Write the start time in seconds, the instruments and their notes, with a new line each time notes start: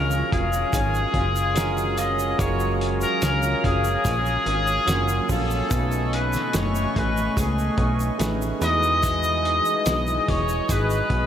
Already playing: analog synth bass C#2, clean electric guitar F#3 G#3 C#4 F4, tine electric piano G#3 C#4 F4 F#4 A#4, trumpet A#4, analog synth pad C#5 F5 G#5
0.11 shaker
0.31 analog synth bass F1, clean electric guitar F4, trumpet G#4, kick, closed hi-hat
0.53 shaker
0.73 analog synth bass G#1, clean electric guitar C#4, kick, closed hi-hat, shaker
0.95 shaker
1.14 analog synth bass F#1, clean electric guitar F4, kick, closed hi-hat
1.36 shaker
1.55 tine electric piano G#3 C#4 F4 F#4 A#4, clean electric guitar C#4, snare, closed hi-hat, shaker
1.77 shaker
1.97 clean electric guitar F4, trumpet D#5, closed hi-hat, shaker
2.19 shaker
2.38 analog synth bass F#1, clean electric guitar F#3, tine electric piano G#3 C#4 F4 F#4 A#4, trumpet C#5, kick, closed hi-hat, shaker
2.60 shaker
2.80 clean electric guitar F4, closed hi-hat
3.01 trumpet A#4, shaker
3.22 analog synth bass C#2, clean electric guitar C#4, snare, closed hi-hat, shaker
3.43 shaker
3.63 analog synth bass F#1, clean electric guitar F4, trumpet G#4, kick, closed hi-hat
3.84 shaker
4.05 analog synth bass A#1, clean electric guitar C#4, kick, closed hi-hat, shaker
4.26 shaker
4.46 analog synth bass G#1, clean electric guitar F4, closed hi-hat
4.67 shaker
4.86 analog synth bass F#1, tine electric piano F#3 A#3 C#4 F4 F#4, clean electric guitar C#4, snare, closed hi-hat, shaker
5.09 shaker
5.29 analog synth bass A#1, clean electric guitar F4, trumpet A4, kick, open hi-hat, shaker
5.51 shaker
5.69 analog synth bass B1, clean electric guitar B2, tine electric piano A3 C#4 D#4 A4 G#5, analog synth pad A3 D#5 G#5 C#6, kick, closed hi-hat, shaker
5.78 tine electric piano B4
5.92 shaker
6.12 clean electric guitar C#4, trumpet B4, closed hi-hat
6.33 snare, shaker
6.53 analog synth bass F#1, clean electric guitar A3, trumpet C#5, snare, closed hi-hat, shaker
6.75 shaker
6.95 analog synth bass A1, clean electric guitar C#4, trumpet B4, kick, closed hi-hat
7.17 shaker
7.37 analog synth bass C#2, clean electric guitar A3, trumpet G#4, kick, closed hi-hat, shaker
7.58 shaker
7.78 analog synth bass B1, clean electric guitar C#4, kick, closed hi-hat
8.00 shaker
8.18 analog synth bass A1, tine electric piano A3 C#4 D#4 G#4 B4, clean electric guitar A3, snare, closed hi-hat, shaker
8.42 shaker
8.60 analog synth bass E2, clean electric guitar E3, tine electric piano G#3 D#4 E4 F#4 B4, analog synth pad G#4 D#5 G#5 D#6, trumpet D#5, closed hi-hat, shaker
8.83 shaker
9.03 clean electric guitar E3, kick, closed hi-hat, shaker
9.23 shaker
9.44 clean electric guitar D#4, closed hi-hat
9.65 shaker
9.86 analog synth bass B1, clean electric guitar G#3, snare, closed hi-hat, shaker
10.07 shaker
10.27 analog synth bass E1, clean electric guitar D#4, trumpet C#5, kick, closed hi-hat
10.49 shaker
10.69 analog synth bass G#1, clean electric guitar G#3, trumpet B4, kick, closed hi-hat, shaker
10.90 shaker
11.10 analog synth bass B1, clean electric guitar C#4, kick, closed hi-hat